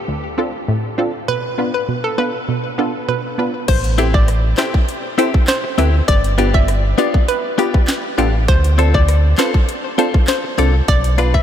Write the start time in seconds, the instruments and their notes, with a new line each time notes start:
0.08 synth stab D2
0.38 synth stab C4 D4 F4 A4
0.68 synth stab A2
0.98 synth stab C4 D4 F4 A4
1.28 synth stab B2, synth pluck B4
1.58 synth stab B3 D4 F4 B4
1.74 synth pluck B4
1.88 synth stab B2
2.04 synth pluck A4
2.18 synth stab B3 D4 F4 B4, synth pluck B4
2.48 synth stab B2
2.78 synth stab B3 D4 F4 A4
3.08 synth stab B2, synth pluck B4
3.38 synth stab B3 D4 F4 B4
3.68 sub bass A1, synth pluck C5, kick, closed hi-hat, crash
3.84 closed hi-hat
3.98 clean electric guitar C4 E4 G4, synth stab C4 E4 G4 A4 C5, closed hi-hat
4.14 synth pluck D5, kick
4.28 cross-stick, closed hi-hat
4.58 synth stab C4 E4 G4 A4 C5, clean electric guitar C4 E4 G4, synth pluck C5, snare, clap, closed hi-hat
4.74 kick
4.89 closed hi-hat
5.18 synth stab C4 E4 G4 A4 C5, clean electric guitar C4 E4 G4, closed hi-hat
5.34 kick
5.48 synth pluck C5, snare, clap, closed hi-hat
5.64 muted clean electric guitar stroke
5.78 sub bass D2, clean electric guitar C4 E4 G4, synth stab C4 E4 G4 A4 B4, closed hi-hat
6.08 sub bass G1, synth pluck D5, kick, closed hi-hat
6.24 closed hi-hat
6.38 synth stab B3 D4 F4 G4 B4, clean electric guitar B3 F4 G4, closed hi-hat
6.54 synth pluck E5, kick
6.68 cross-stick, closed hi-hat
6.98 synth stab B3 D4 F4 G4 B4, clean electric guitar B3 F4 G4, synth pluck D5, closed hi-hat
7.14 kick
7.28 synth pluck B4, closed hi-hat
7.58 synth stab B3 D4 F4 G4 B4, clean electric guitar B3 F4 G4, synth pluck G4, closed hi-hat
7.74 kick
7.88 snare, clap, closed hi-hat
8.18 sub bass A1, synth stab B3 D4 F4 G4 A4, clean electric guitar B3 F4 G4, closed hi-hat
8.48 sub bass D2, synth pluck C5, kick, closed hi-hat
8.64 closed hi-hat
8.78 synth stab C4 D4 F4 A4 C5, clean electric guitar C4 F4 A4, closed hi-hat
8.94 synth pluck D5, kick
9.08 cross-stick, closed hi-hat
9.38 synth stab C4 D4 F4 A4 B4, clean electric guitar C4 F4 A4, synth pluck C5, snare, clap, closed hi-hat
9.54 kick
9.69 closed hi-hat
9.98 synth stab C4 D4 F4 A4 C5, clean electric guitar C4 F4 A4, closed hi-hat
10.14 kick
10.28 synth pluck C5, snare, clap, closed hi-hat
10.44 muted clean electric guitar stroke
10.58 sub bass C2, synth stab C4 D4 F4 A4 D5, clean electric guitar C4 F4 A4, closed hi-hat
10.88 sub bass B1, synth pluck D5, kick, closed hi-hat
11.04 closed hi-hat
11.18 synth stab B3 D4 F4 B4 D5, clean electric guitar D4 F4 B4, closed hi-hat
11.34 synth pluck E5, kick